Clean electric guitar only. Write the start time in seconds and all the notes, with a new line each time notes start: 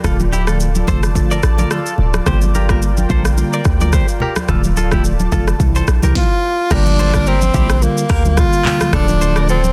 0.05 F4 A4
0.33 E4 G4
0.48 F4 A4
0.88 A4 C5
1.31 A#4 D5
1.59 A#4 D5
1.72 F4 A4
2.27 G4 C5
2.55 G4 A#4
2.70 G4 A#4
3.11 A4 C5
3.54 A#4 D5
3.82 A#4 D5
3.94 G4 C5
4.22 G4 A#4
4.49 F4 A4
4.77 F4 A4
4.93 E4 G4
5.33 F4 A4
5.76 A4 C5
6.04 G4 A#4
6.72 G4 A#4
6.99 A4 C5
7.15 A#4 D5
7.27 G4 A#4
7.55 E4 G4
8.10 G4 A#4
8.66 G4 A#4
8.94 F4 A4
9.21 A4 C5
9.37 A#4 D5
9.49 F4 A4